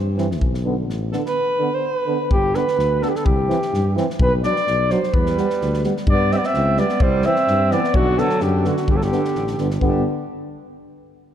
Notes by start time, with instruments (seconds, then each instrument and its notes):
Already playing: tuba G2
0.17 euphonium E3 C4, snare
0.31 snare
0.40 tuba B1, kick
0.54 snare
0.64 euphonium D3 B3
0.89 tuba A1, snare
1.12 euphonium D3 B3, alto saxophone A4, snare
1.26 alto saxophone B4, snare
1.59 euphonium D3 B3
1.74 alto saxophone C5
1.86 alto saxophone B4
2.06 euphonium D3 B3
2.30 tuba G1, flugelhorn G4, kick
2.54 euphonium D3 B3, flugelhorn B4, snare
2.68 snare
2.78 tuba D2, snare
3.02 euphonium D3 B3, flugelhorn A4, snare
3.09 flugelhorn G4
3.15 flugelhorn A4, snare
3.25 tuba C2, flugelhorn G4, kick
3.48 euphonium E3 C4, snare
3.62 snare
3.73 tuba G2, snare
3.96 euphonium E3 C4, snare
4.10 snare
4.19 tuba B1, flugelhorn B4, kick
4.42 euphonium F#3 D4, flugelhorn D5, snare
4.56 snare
4.67 tuba B1, snare
4.90 euphonium F#3 D4, flugelhorn C5, snare
5.03 snare
5.13 tuba E2, alto saxophone G3, flugelhorn B4, kick
5.26 snare
5.37 euphonium G3 B3, snare
5.50 snare
5.61 tuba D2, snare
5.74 snare
5.84 euphonium G3 B3, snare
5.97 snare
6.07 tuba G2, alto saxophone B3, flugelhorn D5, kick
6.30 euphonium G3 B3, alto saxophone C4, flugelhorn E5, snare
6.37 alto saxophone B3, flugelhorn D5
6.44 alto saxophone C4, flugelhorn E5, snare
6.54 tuba C#2, snare
6.77 euphonium G3 B3, alto saxophone B3, flugelhorn D5, snare
6.89 snare
7.00 tuba C2, alto saxophone G3, flugelhorn C5, kick
7.22 euphonium E3 C4, flugelhorn E5, snare
7.26 alto saxophone C4
7.36 snare
7.47 tuba G2, snare
7.71 euphonium E3 C4, alto saxophone B3, flugelhorn D5, snare
7.84 snare
7.94 tuba B1, alto saxophone D3, flugelhorn F#4, kick
8.18 euphonium D3 B3, alto saxophone F#3, flugelhorn A4, snare
8.30 snare
8.40 tuba F#2, alto saxophone D3, flugelhorn G4, snare
8.64 euphonium D3 B3, alto saxophone D3, flugelhorn F#4, snare
8.77 snare
8.88 tuba G1, alto saxophone D3, flugelhorn G4, kick
8.96 alto saxophone F#3, flugelhorn A4
9.01 alto saxophone D3, flugelhorn G4, snare
9.11 euphonium D3 B3, snare
9.25 snare
9.35 tuba A1, snare
9.47 snare
9.58 tuba G1, euphonium D3 B3, snare
9.71 snare
9.81 tuba G1, euphonium D3 B3, alto saxophone D4, flugelhorn G4, kick